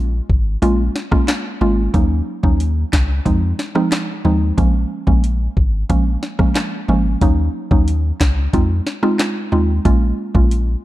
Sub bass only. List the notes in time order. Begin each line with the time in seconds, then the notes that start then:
Already playing: A#1
0.30 G#1
0.62 A#1
1.61 G#1
1.94 D#2
2.44 D#2
2.93 C#2
3.26 F2
4.25 D#2
4.58 A#1
5.07 A#1
5.57 G#1
5.90 A#1
6.89 G#1
7.22 D#2
7.71 D#2
8.21 C#2
8.53 F2
9.52 D#2
9.85 A#1
10.35 A#1